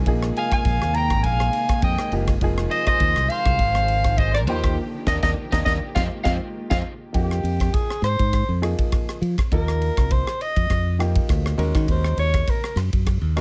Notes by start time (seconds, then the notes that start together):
Already playing: C3 D#3 G#4
0.06 A#1 F3 G#3 A#3 D#4 G#4, kick, ride
0.23 cross-stick
0.37 F5 G#5, ride
0.52 F5 G#5, kick, cross-stick, ride
0.65 A#1, kick, ride
0.82 D#2, cross-stick
0.94 G5 A#5, ride
1.10 G#1, kick, cross-stick, ride
1.23 A#1 F5 G#5, kick, ride
1.40 cross-stick
1.53 ride
1.69 kick, cross-stick, ride
1.82 F2 D#5 G5, kick, ride
1.98 cross-stick
2.12 F#1 F3 A#3 D#4 G4, ride
2.27 kick, cross-stick, ride
2.41 F1 F3 A#3 D#4 G#4, kick, ride
2.58 cross-stick
2.71 C5 D#5, ride
2.87 C5 D#5, kick, cross-stick, ride
3.00 D#2, kick, ride
3.16 C2, cross-stick
3.29 C5 F5, ride
3.46 C2, kick, cross-stick, ride
3.59 G#1, kick, ride
3.75 cross-stick
3.88 ride
4.04 kick, cross-stick, ride
4.18 C5 D#5, kick, ride
4.34 A#4 D5, cross-stick
4.47 D#2 D3 F3 A#3 D#4 G4 C5, ride
4.64 kick, cross-stick, ride
5.06 D#2 A#3 D4 D#4 A#4 D5 D#5, kick, snare
5.23 D#2 A#3 D4 D#4 A#4 D5 D#5, kick, snare
5.52 D#2 A#3 D4 D#4 A#4 D5 D#5, kick, snare
5.65 D#2 A#3 D4 D#4 A#4 D5 D#5, kick, snare
5.95 F2 D#3 G#3 A#3 C4 D#4 F4 C5 D#5 F5, kick, snare
6.24 F2 C4 D#4 F4 C5 D#5 F5, kick, snare
6.70 F2 C4 D#4 F4 C5 D#5 F5, kick, snare
7.13 F2 F3 A#3 D#4 G4, kick, ride
7.31 cross-stick
7.43 F2, ride
7.60 kick, cross-stick, ride
7.74 G#4, kick, ride
7.90 cross-stick
8.02 G#2 C5, cross-stick, ride
8.19 G#2, kick, ride
8.33 kick, cross-stick, ride
8.49 F2
8.62 F3 A#3 D#4 G#4, cross-stick, ride
8.79 kick, ride
8.92 kick, cross-stick, ride
9.09 cross-stick
9.21 F3, ride
9.38 kick, cross-stick, ride
9.52 D#2 F3 A#3 D#4 A#4, kick, ride
9.68 cross-stick
9.82 ride
9.97 C2, kick, cross-stick, ride
10.11 C5, kick, ride
10.27 cross-stick
10.41 D#5, ride
10.56 F2, kick, ride
10.70 F2, kick, cross-stick, ride
10.99 F3 A#3 D#4 G4, cross-stick, ride
11.16 kick, ride
11.29 D2, kick, cross-stick, ride
11.46 cross-stick
11.58 D#2 G#3 C#4 F#4 A#4, ride
11.75 D#3, kick, cross-stick, ride
11.88 D#2 C5, kick, ride
12.04 cross-stick
12.17 D#2 C#5, ride
12.34 kick, cross-stick, ride
12.48 A#4, kick, ride
12.64 cross-stick
12.76 F#2, cross-stick, ride
12.93 F#2, kick, ride
13.07 kick, cross-stick, ride
13.21 D#2
13.36 G#3 C#4 F#4 A#4, cross-stick, ride